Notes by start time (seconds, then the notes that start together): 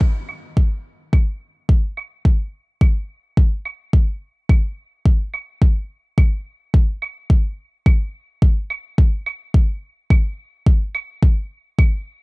0.01 kick
0.29 claves
0.57 kick
1.13 kick, claves
1.69 kick
1.97 claves
2.25 kick
2.81 kick, claves
3.37 kick
3.65 claves
3.93 kick
4.49 kick, claves
5.06 kick
5.34 claves
5.62 kick
6.18 kick, claves
6.74 kick
7.02 claves
7.30 kick
7.86 kick, claves
8.42 kick
8.70 claves
8.98 kick
9.26 claves
9.54 kick
10.10 kick, claves
10.66 kick
10.95 claves
11.23 kick
11.79 kick, claves